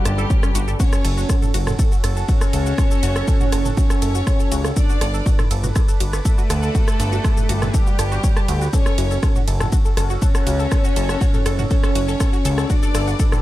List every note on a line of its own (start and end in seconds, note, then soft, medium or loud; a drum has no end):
0.00 0.85 F#2 medium
0.00 0.85 C#3 medium
0.00 0.70 G3 loud
0.00 0.70 G4 loud
0.00 0.76 G4 medium
0.00 0.76 A4 medium
0.00 0.76 B4 medium
0.00 0.76 D5 medium
0.05 0.25 G1 loud
0.05 0.16 A5 medium
0.05 cross-stick medium
0.05 closed hi-hat loud
0.05 shaker medium
0.18 0.25 A4 loud
0.18 shaker soft
0.30 0.41 C#4 medium
0.30 kick loud
0.30 shaker medium
0.43 0.50 C#4 loud
0.43 cross-stick medium
0.43 shaker soft
0.55 0.75 G1 medium
0.55 0.62 F#4 loud
0.55 closed hi-hat loud
0.55 shaker medium
0.68 0.78 A4 medium
0.68 shaker soft
0.80 4.73 C#4 medium
0.80 1.45 C#4 loud
0.80 4.73 F#4 medium
0.80 0.84 F#4 medium
0.80 6.71 A4 medium
0.80 1.45 C#5 loud
0.80 kick loud
0.80 ride medium
0.80 shaker medium
0.93 0.97 A4 medium
0.93 cross-stick medium
0.93 shaker soft
1.05 1.25 F#1 loud
1.05 1.15 A4 medium
1.05 closed hi-hat loud
1.05 ride medium
1.05 shaker medium
1.17 1.21 F#4 medium
1.17 shaker soft
1.29 1.34 A4 medium
1.29 kick loud
1.29 cross-stick medium
1.29 ride medium
1.29 shaker medium
1.42 1.52 A4 medium
1.42 mid tom medium
1.42 shaker soft
1.54 1.74 F#1 medium
1.54 1.58 F#4 medium
1.54 closed hi-hat loud
1.54 ride medium
1.54 shaker medium
1.67 1.71 A4 medium
1.67 cross-stick medium
1.67 mid tom medium
1.67 shaker soft
1.79 1.89 A4 medium
1.79 kick loud
1.79 ride medium
1.79 shaker medium
1.92 1.96 F#4 medium
1.92 shaker soft
2.04 2.24 F#1 medium
2.04 2.08 A4 medium
2.04 cross-stick soft
2.04 closed hi-hat loud
2.04 ride medium
2.04 shaker medium
2.17 2.26 A4 medium
2.17 shaker soft
2.29 3.68 C#4 loud
2.29 2.33 F#4 medium
2.29 3.68 C#5 loud
2.29 kick loud
2.29 ride medium
2.29 shaker medium
2.41 2.45 A4 medium
2.41 cross-stick medium
2.41 shaker soft
2.53 2.73 C#2 loud
2.53 2.64 A4 medium
2.53 closed hi-hat loud
2.53 ride medium
2.53 shaker medium
2.66 2.70 F#4 medium
2.66 shaker soft
2.78 2.82 A4 medium
2.78 kick loud
2.78 cross-stick medium
2.78 ride medium
2.78 shaker medium
2.91 3.01 A4 medium
2.91 shaker soft
3.03 3.23 F#1 loud
3.03 3.07 F#4 medium
3.03 closed hi-hat loud
3.03 ride medium
3.03 shaker medium
3.16 3.20 A4 medium
3.16 cross-stick soft
3.16 shaker soft
3.28 3.38 A4 medium
3.28 kick loud
3.28 ride medium
3.28 shaker medium
3.41 3.44 F#4 medium
3.41 mid tom medium
3.41 shaker soft
3.52 3.72 F#1 medium
3.52 3.57 A4 medium
3.52 cross-stick medium
3.52 closed hi-hat loud
3.52 ride medium
3.52 shaker medium
3.65 3.75 A4 medium
3.65 mid tom medium
3.65 shaker soft
3.77 4.67 C#4 loud
3.77 3.82 F#4 medium
3.77 4.67 C#5 loud
3.77 kick loud
3.77 ride medium
3.77 shaker medium
3.90 3.94 A4 medium
3.90 cross-stick medium
3.90 shaker soft
4.02 4.22 F#1 medium
4.02 4.13 A4 medium
4.02 closed hi-hat loud
4.02 ride medium
4.02 shaker medium
4.15 4.19 F#4 medium
4.15 shaker soft
4.27 4.31 A4 medium
4.27 kick loud
4.27 cross-stick medium
4.27 ride medium
4.27 shaker medium
4.40 4.50 A4 medium
4.40 shaker medium
4.52 4.72 C#2 loud
4.52 4.56 F#4 medium
4.52 closed hi-hat loud
4.52 ride medium
4.52 shaker medium
4.65 4.68 A4 medium
4.65 cross-stick medium
4.65 shaker soft
4.76 5.41 D4 loud
4.76 4.87 A4 medium
4.76 8.69 B4 medium
4.76 8.69 D5 medium
4.76 5.41 D5 loud
4.76 kick loud
4.76 ride medium
4.76 shaker medium
4.89 4.93 F#4 medium
4.89 shaker soft
5.01 5.21 G1 loud
5.01 5.06 A4 medium
5.01 cross-stick medium
5.01 closed hi-hat loud
5.01 ride medium
5.01 shaker medium
5.14 5.24 A4 medium
5.14 shaker soft
5.26 5.30 F#4 medium
5.26 kick loud
5.26 ride medium
5.26 shaker medium
5.39 5.43 A4 medium
5.39 cross-stick soft
5.39 mid tom medium
5.39 shaker soft
5.51 5.71 G1 medium
5.51 5.61 A4 medium
5.51 closed hi-hat loud
5.51 ride medium
5.51 shaker medium
5.64 5.68 F#4 medium
5.64 mid tom medium
5.64 shaker soft
5.76 5.80 A4 medium
5.76 kick loud
5.76 cross-stick medium
5.76 ride medium
5.76 shaker medium
5.88 5.98 A4 medium
5.88 shaker soft
6.00 6.20 G1 medium
6.00 6.05 F#4 medium
6.00 closed hi-hat loud
6.00 ride medium
6.00 shaker medium
6.13 6.17 A4 medium
6.13 cross-stick soft
6.13 shaker soft
6.25 7.76 A3 loud
6.25 6.36 A4 medium
6.25 7.74 A4 loud
6.25 kick loud
6.25 ride medium
6.25 shaker medium
6.38 6.42 F#4 medium
6.38 shaker soft
6.50 6.70 D2 loud
6.50 6.54 A4 medium
6.50 cross-stick medium
6.50 closed hi-hat loud
6.50 ride medium
6.50 shaker medium
6.63 6.73 A4 medium
6.63 shaker soft
6.75 6.79 F#4 medium
6.75 8.71 G4 medium
6.75 kick loud
6.75 ride medium
6.75 shaker medium
6.88 6.92 A4 medium
6.88 cross-stick medium
6.88 shaker soft
7.00 7.20 G1 loud
7.00 7.10 A4 medium
7.00 closed hi-hat loud
7.00 ride medium
7.00 shaker medium
7.12 7.16 F#4 medium
7.12 shaker soft
7.24 7.29 A4 medium
7.24 kick loud
7.24 cross-stick medium
7.24 ride medium
7.24 shaker medium
7.37 7.47 A4 medium
7.37 mid tom medium
7.37 shaker soft
7.49 7.69 G1 medium
7.49 7.53 F#4 medium
7.49 closed hi-hat loud
7.49 ride medium
7.49 shaker medium
7.62 7.66 A4 medium
7.62 cross-stick medium
7.62 mid tom medium
7.62 shaker soft
7.74 8.64 G3 loud
7.74 8.64 G4 loud
7.74 7.85 A4 medium
7.74 kick loud
7.74 ride medium
7.74 shaker medium
7.87 7.91 F#4 medium
7.87 shaker soft
7.99 8.19 G1 medium
7.99 8.03 A4 medium
7.99 cross-stick medium
7.99 closed hi-hat loud
7.99 ride medium
7.99 shaker medium
8.12 8.21 F#4 loud
8.12 shaker soft
8.24 8.28 C#5 medium
8.24 kick loud
8.24 ride medium
8.24 shaker medium
8.36 8.40 A5 loud
8.36 cross-stick medium
8.36 shaker soft
8.48 8.68 D2 loud
8.48 8.53 F#4 medium
8.48 closed hi-hat loud
8.48 ride medium
8.48 shaker medium
8.61 8.68 F#4 medium
8.61 shaker soft
8.73 12.66 C#4 medium
8.73 9.38 C#4 loud
8.73 12.66 F#4 medium
8.73 8.77 A4 medium
8.73 12.66 A4 medium
8.73 9.38 C#5 loud
8.73 kick loud
8.73 ride medium
8.73 shaker medium
8.86 8.96 A4 medium
8.86 cross-stick medium
8.86 shaker soft
8.98 9.18 F#1 loud
8.98 9.02 F#4 medium
8.98 closed hi-hat loud
8.98 ride medium
8.98 shaker medium
9.11 9.15 A4 medium
9.11 shaker soft
9.23 9.33 A4 medium
9.23 kick loud
9.23 cross-stick medium
9.23 ride medium
9.23 shaker medium
9.36 9.40 F#4 medium
9.36 mid tom medium
9.36 shaker soft
9.48 9.68 F#1 medium
9.48 9.52 A4 medium
9.48 closed hi-hat loud
9.48 ride medium
9.48 shaker medium
9.60 9.70 A4 medium
9.60 cross-stick medium
9.60 mid tom medium
9.60 shaker soft
9.72 9.77 F#4 medium
9.72 kick loud
9.72 ride medium
9.72 shaker medium
9.85 9.89 A4 medium
9.85 shaker soft
9.97 10.17 F#1 medium
9.97 10.08 A4 medium
9.97 cross-stick medium
9.97 closed hi-hat loud
9.97 ride medium
9.97 shaker medium
10.10 10.14 F#4 medium
10.10 shaker soft
10.22 11.61 C#4 loud
10.22 10.26 A4 medium
10.22 11.61 C#5 loud
10.22 kick loud
10.22 ride medium
10.22 shaker medium
10.35 10.45 A4 medium
10.35 cross-stick medium
10.35 shaker soft
10.47 10.67 C#2 loud
10.47 10.51 F#4 medium
10.47 closed hi-hat loud
10.47 ride medium
10.47 shaker medium
10.60 10.64 A4 medium
10.60 shaker soft
10.71 10.82 A4 medium
10.71 kick loud
10.71 cross-stick medium
10.71 ride medium
10.71 shaker medium
10.84 10.88 F#4 medium
10.84 shaker soft
10.96 11.16 F#1 loud
10.96 11.01 A4 medium
10.96 closed hi-hat loud
10.96 ride medium
10.96 shaker medium
11.09 11.19 A4 medium
11.09 cross-stick medium
11.09 shaker soft
11.21 11.25 F#4 medium
11.21 kick loud
11.21 ride medium
11.21 shaker medium
11.34 11.38 A4 medium
11.34 mid tom medium
11.34 shaker soft
11.46 11.66 F#1 medium
11.46 11.56 A4 medium
11.46 cross-stick medium
11.46 closed hi-hat loud
11.46 ride medium
11.46 shaker medium
11.59 11.63 F#4 medium
11.59 mid tom medium
11.59 shaker soft
11.71 12.71 C#4 loud
11.71 11.75 A4 medium
11.71 12.70 C#5 loud
11.71 kick loud
11.71 ride medium
11.71 shaker medium
11.84 11.93 A4 medium
11.84 cross-stick medium
11.84 shaker soft
11.95 12.15 F#1 medium
11.95 12.00 F#4 medium
11.95 closed hi-hat loud
11.95 ride medium
11.95 shaker medium
12.08 12.12 A4 medium
12.08 shaker soft
12.20 12.31 A4 medium
12.20 kick loud
12.20 cross-stick medium
12.20 ride medium
12.20 shaker medium
12.33 12.37 F#4 medium
12.33 shaker soft
12.45 12.65 C#2 loud
12.45 12.49 A4 medium
12.45 closed hi-hat loud
12.45 ride medium
12.45 shaker medium
12.58 12.68 A4 medium
12.58 cross-stick medium
12.58 shaker soft
12.70 13.35 D4 loud
12.70 12.74 F#4 medium
12.70 13.42 G4 medium
12.70 13.42 A4 medium
12.70 13.42 B4 medium
12.70 13.35 D5 loud
12.70 13.42 D5 medium
12.70 kick loud
12.70 ride medium
12.70 shaker medium
12.83 12.87 A4 medium
12.83 shaker soft
12.95 13.15 G1 loud
12.95 13.05 A4 medium
12.95 cross-stick medium
12.95 closed hi-hat loud
12.95 ride medium
12.95 shaker medium
13.07 13.11 F#4 medium
13.07 shaker soft
13.19 13.24 A4 medium
13.19 kick loud
13.19 ride medium
13.19 shaker medium
13.32 13.42 A4 medium
13.32 cross-stick medium
13.32 mid tom medium
13.32 shaker soft